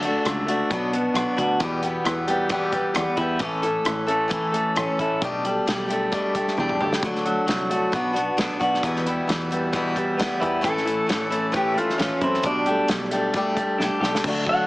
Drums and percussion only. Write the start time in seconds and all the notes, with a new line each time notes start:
0.03 closed hi-hat
0.25 cross-stick, closed hi-hat
0.48 closed hi-hat
0.71 kick, closed hi-hat
0.93 closed hi-hat
1.15 cross-stick, closed hi-hat
1.38 kick, closed hi-hat
1.60 kick, closed hi-hat
1.83 closed hi-hat
2.05 cross-stick, closed hi-hat
2.28 closed hi-hat
2.49 kick, closed hi-hat
2.72 kick, closed hi-hat
2.95 cross-stick, closed hi-hat
3.17 kick, closed hi-hat
3.39 kick, closed hi-hat
3.63 closed hi-hat
3.85 cross-stick, closed hi-hat
4.08 closed hi-hat
4.31 kick, closed hi-hat
4.54 closed hi-hat
4.76 cross-stick, closed hi-hat
4.99 kick, closed hi-hat
5.22 kick, closed hi-hat
5.45 closed hi-hat
5.68 snare, closed hi-hat
5.90 closed hi-hat
6.13 kick, closed hi-hat
6.35 kick, closed hi-hat
6.48 snare
6.58 high tom
6.69 mid tom
6.81 mid tom
6.93 snare
7.03 kick, closed hi-hat
7.15 snare
7.26 closed hi-hat
7.48 snare, closed hi-hat
7.71 closed hi-hat
7.93 kick, closed hi-hat
8.16 closed hi-hat
8.38 snare, closed hi-hat
8.61 kick, closed hi-hat
8.74 snare
8.83 kick, closed hi-hat
8.96 snare
9.06 closed hi-hat
9.29 snare, closed hi-hat
9.52 closed hi-hat
9.73 kick, closed hi-hat
9.96 kick, closed hi-hat
10.19 snare, closed hi-hat
10.42 kick, closed hi-hat
10.64 kick, closed hi-hat
10.77 snare
10.87 closed hi-hat
11.09 snare, closed hi-hat
11.32 closed hi-hat
11.54 kick, closed hi-hat
11.78 closed hi-hat
11.90 snare
11.99 snare, closed hi-hat
12.21 kick, closed hi-hat
12.34 snare
12.43 kick, closed hi-hat
12.66 closed hi-hat
12.88 snare, closed hi-hat
13.11 closed hi-hat
13.34 kick, closed hi-hat
13.57 kick, closed hi-hat
13.80 snare
14.03 snare
14.15 snare
14.24 kick, crash
14.47 kick